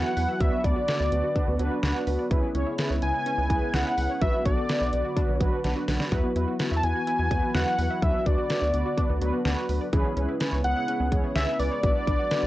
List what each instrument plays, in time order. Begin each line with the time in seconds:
Already playing: analog synth pad E3 F#3 B3 F#4, analog polysynth B3 E4 F#4 B4, analog synth lead F#5
0.05 synth pluck F#4
0.17 analog synth bass E2, analog polysynth B3 E4 F#4 B4, synth pluck B4, open hi-hat
0.29 synth pluck E5
0.40 analog synth bass D2, analog synth pad D3, synth pluck F#3, analog polysynth B3 D4 F#4 B4, analog synth lead E5, kick, closed hi-hat
0.52 synth pluck B3
0.64 analog synth bass D2, analog polysynth B3 D4 F#4 B4, synth pluck D4, analog synth lead D5, kick, closed hi-hat
0.76 synth pluck F#4
0.88 analog polysynth B3 D4 F#4 B4, synth pluck B4, snare, closed hi-hat
1.00 analog synth bass D2, synth pluck D5
1.12 analog synth bass D2, analog polysynth B3 D4 F#4 B4, closed hi-hat
1.24 synth pluck F#4
1.36 analog polysynth B3 D4 F#4 B4, synth pluck D4, kick, closed hi-hat
1.48 analog synth bass D2, synth pluck B3
1.59 analog synth bass D2, synth pluck F#3, analog polysynth B3 D4 F#4 B4, closed hi-hat
1.71 synth pluck B3
1.83 analog synth bass D2, analog polysynth B3 D4 F#4 B4, synth pluck D4, snare, closed hi-hat
1.95 synth pluck F#4
2.07 analog synth bass D2, analog polysynth B3 D4 F#4 B4, synth pluck B4, open hi-hat
2.19 synth pluck D5
2.31 analog synth bass C#2, analog synth pad C#3 G#3 E4, synth pluck E3, analog polysynth C#4 E4 G#4 B4, kick, closed hi-hat
2.43 synth pluck B3
2.55 analog synth bass C#2, synth pluck C#4, analog polysynth C#4 E4 G#4 C#5, closed hi-hat
2.67 synth pluck E4
2.78 analog polysynth C#4 E4 G#4 B4, synth pluck B4, snare, closed hi-hat
2.90 analog synth bass C#2, synth pluck C#5
3.02 analog synth bass C#2, analog polysynth C#4 E4 G#4 B4, analog synth lead G#5, closed hi-hat
3.14 synth pluck E4
3.26 analog polysynth C#4 E4 G#4 B4, synth pluck C#4, closed hi-hat
3.38 analog synth bass C#2, synth pluck B3
3.50 analog synth bass C#2, synth pluck E3, analog polysynth C#4 E4 G#4 B4, kick, closed hi-hat
3.62 synth pluck B3
3.74 analog synth bass C#2, analog polysynth C#4 E4 G#4 B4, synth pluck C#4, analog synth lead F#5, snare, closed hi-hat
3.86 synth pluck E4
3.98 analog synth bass C#2, analog polysynth C#4 E4 G#4 B4, synth pluck B4, open hi-hat
4.10 synth pluck C#5
4.21 analog synth bass B1, analog synth pad D3 F#3 F#4, synth pluck F#3, analog polysynth B3 D4 F#4 B4, analog synth lead E5, kick, closed hi-hat
4.33 synth pluck B3
4.45 analog synth bass B1, analog polysynth B3 D4 F#4 A4, synth pluck D4, analog synth lead D5, kick, closed hi-hat
4.57 synth pluck F#4
4.69 analog polysynth B3 D4 F#4, synth pluck B4, snare, closed hi-hat
4.81 analog synth bass B1, synth pluck D5
4.93 analog synth bass B1, analog polysynth B3 D4 F#4 B4, closed hi-hat
5.05 synth pluck F#4
5.17 analog polysynth B3 D4 F#4 B4, synth pluck D4, kick, closed hi-hat
5.29 analog synth bass B1, synth pluck B3
5.35 analog synth lead C#5
5.40 analog synth bass B1, synth pluck F#3, analog polysynth B3 D4 F#4 B4, kick, closed hi-hat
5.52 synth pluck B3
5.64 analog synth bass B1, analog polysynth B3 D4 F#4 B4, synth pluck D4, snare, closed hi-hat
5.76 synth pluck F#4
5.88 analog synth bass B1, analog polysynth B3 D4 F#4 B4, synth pluck B4, snare, open hi-hat
6.00 synth pluck D5, snare
6.12 analog synth bass E2, analog synth pad E3 F#4, synth pluck F#3, analog polysynth B3 E4 F#4 B4, kick, closed hi-hat
6.24 synth pluck B3
6.36 analog synth bass E2, analog polysynth B3 E4 F#4 B4, synth pluck E4, closed hi-hat
6.48 synth pluck F#4
6.59 analog polysynth B3 E4 F#4 B4, synth pluck B4, snare, closed hi-hat
6.71 analog synth bass E2, synth pluck E5
6.76 analog synth lead A5
6.83 analog synth bass E2, analog polysynth B3 E4 F#4 B4, analog synth lead G#5, closed hi-hat
6.95 synth pluck F#4
7.07 analog polysynth B3 E4 F#4 B4, synth pluck E4, closed hi-hat
7.19 analog synth bass E2, synth pluck B3
7.31 analog synth bass E2, synth pluck F#3, analog polysynth B3 E4 F#4 B4, kick, closed hi-hat
7.43 synth pluck B3
7.55 analog synth bass E2, analog polysynth B3 E4 F#4 B4, synth pluck E4, analog synth lead F#5, snare, closed hi-hat
7.67 synth pluck F#4
7.79 analog synth bass E2, analog polysynth B3 E4 F#4 B4, synth pluck B4, open hi-hat
7.91 synth pluck E5
8.02 analog synth bass D2, analog synth pad D3, synth pluck F#3, analog polysynth B3 D4 F#4 B4, analog synth lead E5, kick, closed hi-hat
8.14 synth pluck B3
8.26 analog synth bass D2, analog polysynth B3 D4 F#4 B4, synth pluck D4, analog synth lead D5, kick, closed hi-hat
8.38 synth pluck F#4
8.50 analog polysynth B3 D4 F#4 B4, synth pluck B4, snare, closed hi-hat
8.62 analog synth bass D2, synth pluck D5
8.74 analog synth bass D2, analog polysynth B3 D4 F#4 B4, closed hi-hat
8.86 synth pluck F#4
8.98 analog polysynth B3 D4 F#4 B4, synth pluck D4, kick, closed hi-hat
9.10 analog synth bass D2, synth pluck B3
9.21 analog synth bass D2, synth pluck F#3, analog polysynth B3 D4 F#4 B4, closed hi-hat
9.33 synth pluck B3
9.45 analog synth bass D2, analog polysynth B3 D4 F#4 B4, synth pluck D4, snare, closed hi-hat
9.57 synth pluck F#4
9.69 analog synth bass D2, analog polysynth B3 D4 F#4 B4, synth pluck B4, open hi-hat
9.81 synth pluck D5
9.93 analog synth bass C#2, analog synth pad C#3 G#3 B3 E4, synth pluck E3, analog polysynth C#4 E4 G#4 B4, kick, closed hi-hat
10.05 synth pluck B3
10.17 analog synth bass C#2, synth pluck C#4, analog polysynth C#4 E4 G#4 B4, closed hi-hat
10.29 synth pluck E4
10.40 analog polysynth C#4 E4 G#4 B4, synth pluck B4, snare, closed hi-hat
10.52 analog synth bass C#2, synth pluck C#5
10.64 analog synth bass C#2, analog polysynth C#4 E4 G#4, analog synth lead F#5, closed hi-hat
10.76 synth pluck E4
10.88 synth pluck C#4, analog polysynth C#4 E4 G#4 B4, closed hi-hat
11.00 analog synth bass C#2, synth pluck B3
11.12 analog synth bass C#2, synth pluck E3, analog polysynth C#4 E4 G#4 C#5, kick, closed hi-hat
11.24 synth pluck B3
11.36 analog synth bass C#2, analog polysynth C#4 E4 G#4 B4, synth pluck C#4, analog synth lead E5, snare, closed hi-hat
11.48 synth pluck E4
11.59 analog synth bass C#2, analog polysynth C#4 E4 G#4 B4, synth pluck B4, analog synth lead D5, open hi-hat
11.71 synth pluck C#5
11.83 analog synth bass B1, analog synth pad D3 F#3 B3 F#4, synth pluck F#3, analog polysynth B3 D4 F#4 B4, kick, closed hi-hat
11.95 synth pluck B3
12.07 analog synth bass B1, analog polysynth B3 D4 F#4 B4, synth pluck D4, kick, closed hi-hat
12.19 synth pluck F#4
12.31 analog polysynth B3 D4 F#4 B4, synth pluck B4, snare, closed hi-hat
12.43 analog synth bass B1, synth pluck D5